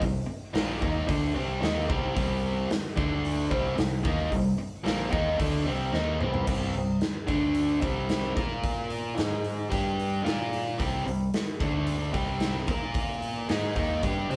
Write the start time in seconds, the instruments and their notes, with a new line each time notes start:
0.00 fingered electric bass C2, overdriven electric guitar C3 G3, kick, open hi-hat
0.26 muted overdriven electric guitar stroke, muted fingered electric bass stroke
0.53 fingered electric bass A#1, overdriven electric guitar A#2 F3 A#3, snare, open hi-hat
0.81 fingered electric bass D#2, overdriven electric guitar D#3 A#3 D#4, kick
1.07 fingered electric bass D2, overdriven electric guitar D3 A3 D4, kick, open hi-hat
1.34 fingered electric bass C2, overdriven electric guitar C3 G3 C4
1.61 fingered electric bass D#2, overdriven electric guitar D#3 A#3 D#4, snare, open hi-hat
1.88 fingered electric bass C2, overdriven electric guitar C3 G3 C4, kick
2.15 fingered electric bass C2, overdriven electric guitar C3 G3 C4, kick, open hi-hat
2.69 muted overdriven electric guitar stroke, snare, open hi-hat
2.96 fingered electric bass D2, overdriven electric guitar D3 A3 D4, kick, snare
3.25 open hi-hat
3.50 fingered electric bass C2, overdriven electric guitar C3 G3 C4, kick
3.76 fingered electric bass C2, overdriven electric guitar C3 G3, snare, open hi-hat
4.03 fingered electric bass D#2, overdriven electric guitar D#3 A#3 D#4, kick
4.31 fingered electric bass C2, overdriven electric guitar C3 G3, kick, open hi-hat
4.59 muted overdriven electric guitar stroke, muted fingered electric bass stroke
4.84 fingered electric bass A#1, overdriven electric guitar A#2 F3 A#3, snare, open hi-hat
5.11 fingered electric bass D#2, overdriven electric guitar D#3 A#3 D#4, kick
5.38 fingered electric bass D2, overdriven electric guitar D3 A3 D4, kick, open hi-hat
5.65 fingered electric bass C2, overdriven electric guitar C3 G3 C4
5.92 fingered electric bass D#2, overdriven electric guitar D#3 A#3 D#4, snare
6.20 fingered electric bass C2, overdriven electric guitar C3 G3 C4, mid tom
6.34 floor tom
6.46 fingered electric bass C2, overdriven electric guitar C3 G3 C4, kick, crash
6.74 fingered electric bass C2, overdriven electric guitar C3 G3, open hi-hat
7.01 snare, open hi-hat
7.27 fingered electric bass D2, overdriven electric guitar D3 A3 D4, kick, open hi-hat
7.55 open hi-hat
7.80 fingered electric bass C2, overdriven electric guitar C3 G3 C4, kick, open hi-hat
8.09 snare, open hi-hat
8.24 snare
8.35 fingered electric bass A#2, overdriven electric guitar A#3 F4 A#4, kick, open hi-hat
8.64 kick, open hi-hat
8.90 open hi-hat
9.17 fingered electric bass G#2, overdriven electric guitar G#3 D#4 G#4, snare, open hi-hat
9.44 open hi-hat
9.70 fingered electric bass G2, overdriven electric guitar G3 D4 G4, kick, open hi-hat
10.00 open hi-hat
10.23 fingered electric bass A#2, overdriven electric guitar A#3 F4 A#4, snare, open hi-hat
10.53 open hi-hat
10.78 fingered electric bass C2, overdriven electric guitar C3 G3 C4, kick, open hi-hat
11.05 fingered electric bass C2, overdriven electric guitar C3 G3, open hi-hat
11.34 snare, open hi-hat
11.60 fingered electric bass D2, overdriven electric guitar D3 A3 D4, kick, open hi-hat
11.87 open hi-hat
12.12 fingered electric bass C2, overdriven electric guitar C3 G3 C4, kick, open hi-hat
12.40 snare, open hi-hat
12.56 snare
12.67 fingered electric bass A#2, overdriven electric guitar A#3 F4 A#4, kick, open hi-hat
12.94 kick, open hi-hat
13.22 open hi-hat
13.49 fingered electric bass G#2, overdriven electric guitar G#3 D#4 G#4, snare, open hi-hat
13.76 fingered electric bass D#2, overdriven electric guitar D#3 A#3 D#4, kick, open hi-hat
14.03 fingered electric bass G2, overdriven electric guitar G3 D4 G4, kick, open hi-hat
14.30 fingered electric bass C3, overdriven electric guitar C4 G4 C5, open hi-hat